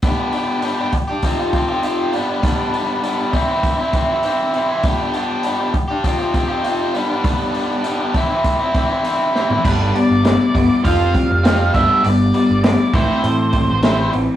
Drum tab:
CC |----------------|----------------|----------------|----------------|
HH |o-o-o-o-o-o-o-o-|o-o-o-o-o-o-o-o-|o-o-o-o-o-o-o-o-|o-o-o-o-o-o-o---|
SD |----------------|----------------|----------------|--------------o-|
FT |----------------|----------------|----------------|---------------o|
BD |o-----o-o-o-----|o-----o-o-o-----|o-----o-o-o-----|o-----o-o-o-----|

CC |x---------------|----------------|
HH |--o-o-o-o-o-o-o-|o-o-o-o-o-o-o-o-|
SD |----o-------o---|----o-------o---|
FT |----------------|----------------|
BD |o-----o-o-o---o-|------o---o-----|